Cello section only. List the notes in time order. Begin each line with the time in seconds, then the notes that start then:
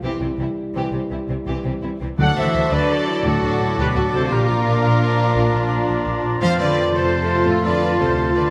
0.03 C3
0.20 C3
0.39 C3
0.75 C3
0.93 C3
1.11 C3
1.28 C3
1.47 C3
1.64 C3
1.83 C3
2.01 C3
2.19 F#3
2.37 E3
2.73 D3
3.26 A2
3.79 B2
3.96 A2
4.14 C3
4.32 A#2
6.42 F3
6.60 D3
6.95 C3
7.48 A2
7.66 D3
8.01 C3
8.37 D3